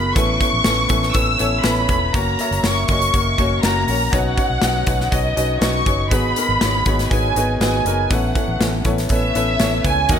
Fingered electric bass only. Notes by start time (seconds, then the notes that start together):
Already playing: F#1
0.16 A1
0.53 A1
0.65 A1
0.90 A1
1.15 A1
1.40 A1
1.64 A1
1.89 E1
2.14 F#1
2.51 F#1
2.63 F#1
2.89 F#1
3.14 F#1
3.39 F#1
3.63 F#1
3.88 A#1
4.13 B1
4.50 B1
4.62 B1
4.87 B1
5.12 B1
5.37 B1
5.61 B1
5.86 F#1
6.11 G#1
6.49 G#1
6.61 G#1
6.86 G#1
7.11 G#1
7.35 G#1
7.60 G#1
7.85 F#1
8.11 A1
8.48 A1
8.60 A1
8.85 A1
9.10 A1
9.35 A1
9.60 A1
9.85 C#2
10.10 D#2